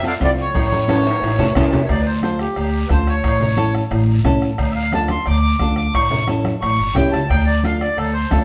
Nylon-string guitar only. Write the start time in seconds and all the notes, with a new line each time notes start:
0.03 C4 F4 A4
0.20 C4 F4 C5
0.88 C#4 E4 A4
1.38 C#4 E4 A4
1.56 C#4 E4 A4
2.23 D4 F4 A4
2.90 D4 F4 A4
3.56 C#4 E4 A4
4.24 C#4 E4 A4
4.93 D4 F4 A4
5.60 D4 F4 A4
6.28 C#4 E4 A4
6.96 C#4 E4 G4
7.64 D4 F4 A4
8.31 D4 F4 A4